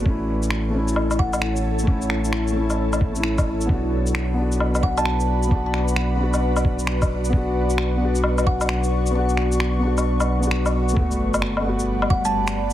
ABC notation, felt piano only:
X:1
M:4/4
L:1/16
Q:"Swing 16ths" 1/4=132
K:Bm
V:1 name="Felt piano"
[A,CE]6 [A,CE]8- [A,CE]2 | [A,CE]6 [A,CE]4- [A,CE] [A,CE]4- [A,CE] | [B,DF]6 [B,DF]8- [B,DF]2 | [B,DF]6 [B,DF]8- [B,DF]2 |
[B,DF]6 [B,DF]8- [B,DF]2 | [B,DF]6 [B,DF]4- [B,DF] [B,DF]4- [B,DF] | [A,B,F]6 [A,B,F]8- [A,B,F]2 |]